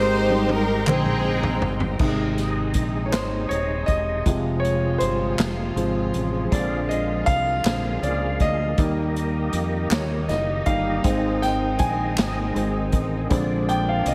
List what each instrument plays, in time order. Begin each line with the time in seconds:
Already playing: fingered electric bass G#1, grand piano G#2 G#3 C4 G4 A#4, tonewheel organ G#3 G5 A#5 C6, string section D#4 G4 C5
0.30 high tom
0.49 high tom
0.54 string section A#4
0.87 fingered electric bass A#1, grand piano G#3 C4 C5 G5, string section C4 D#4, clap, mid tom
0.92 string section G#4
1.05 mid tom
1.43 floor tom
1.62 fingered electric bass G1, floor tom
1.80 floor tom
1.99 fingered electric bass G#1, string section C3 D#3 G#3 D#4, tonewheel organ C3 D#4 G#4 D#5, grand piano C3 D#3 G#3, kick, crash
2.38 snare, closed hi-hat
2.74 fingered electric bass A#1, kick, closed hi-hat
3.06 grand piano C#5
3.12 fingered electric bass G#1, grand piano C5, snare, clap, closed hi-hat
3.49 fingered electric bass D#1, grand piano C#5, closed hi-hat
3.86 fingered electric bass E1, grand piano D#5, kick, closed hi-hat
4.26 fingered electric bass F1, grand piano C3 F3 G#3, tonewheel organ F3, string section F3 F4, kick, closed hi-hat
4.60 grand piano C#5
4.65 closed hi-hat
4.98 fingered electric bass G1, grand piano C5, closed hi-hat
5.39 fingered electric bass F1, snare, clap, closed hi-hat
5.76 fingered electric bass G#1, grand piano F3 G#3 C4, closed hi-hat
6.14 fingered electric bass A1, closed hi-hat
6.51 fingered electric bass A#1, grand piano D3 G#3 C4 D5, tonewheel organ A#3 F5, kick, closed hi-hat
6.55 string section A#3 F4
6.89 grand piano D#5, closed hi-hat
7.26 fingered electric bass C2, grand piano F5, kick, closed hi-hat
7.64 fingered electric bass A#1, grand piano D3 G#3 C4, snare, clap, closed hi-hat
8.02 fingered electric bass C#2, grand piano D5, closed hi-hat
8.40 fingered electric bass D2, grand piano D#5, kick, closed hi-hat
8.77 fingered electric bass D#2, string section D#3 G3 D#4, grand piano D#3 G3 A#3, tonewheel organ D#3 G4 D#5, kick, closed hi-hat
9.16 closed hi-hat
9.53 fingered electric bass F2, closed hi-hat
9.90 fingered electric bass D#2, grand piano C#5, snare, clap, closed hi-hat
10.28 fingered electric bass F#1, grand piano D#5, snare, closed hi-hat
10.65 fingered electric bass G1, grand piano D#3 G3 A#3 F5, kick, closed hi-hat
11.03 fingered electric bass G#1, string section D#3 G#3 C4, grand piano D#3 G#3 C4, tonewheel organ D#3 C4 G#4 D#5, kick, closed hi-hat
11.42 grand piano G5, snare, closed hi-hat
11.79 fingered electric bass A#1, grand piano G#5, kick, closed hi-hat
12.18 fingered electric bass G#1, snare, clap, closed hi-hat
12.53 fingered electric bass G#1, grand piano D#3 G#3 C4, closed hi-hat
12.92 fingered electric bass A1, kick, closed hi-hat
13.29 fingered electric bass A#1, grand piano D3 G#3 C4, string section F3 A#3 D4, tonewheel organ F3 A#3 D5, kick, closed hi-hat
13.69 grand piano G5, closed hi-hat
13.89 grand piano F5
14.06 fingered electric bass C2, grand piano D#5, closed hi-hat